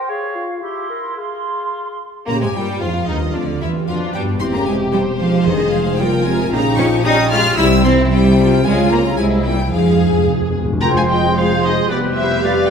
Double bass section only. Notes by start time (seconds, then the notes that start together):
2.28 A#2
2.42 G#2
2.55 G2
2.82 F2
3.09 D#2
3.35 D2
3.61 E2
3.87 F2
4.14 G2
4.40 E1
5.46 F1
6.52 A#1
7.58 C2
8.64 C#2
9.18 C2
9.72 F2
10.83 F1
11.89 F1